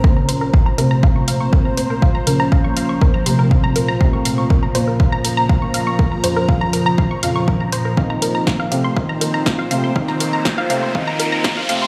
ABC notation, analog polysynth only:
X:1
M:4/4
L:1/8
Q:1/4=121
K:Bbm
V:1 name="Analog polysynth"
[B,D]3 [=A,C]4- [A,C]- | [=A,C] [B,D]4 [A,C]3 | [=A,C]3 [D,B,]4- [D,B,]- | [D,B,] [D,F,]4 [D,F,]3 |
[CE]3 [=A,C] [CE]3 [A,C] | [CE]3 [=A,C] [CE]3 [A,C] |]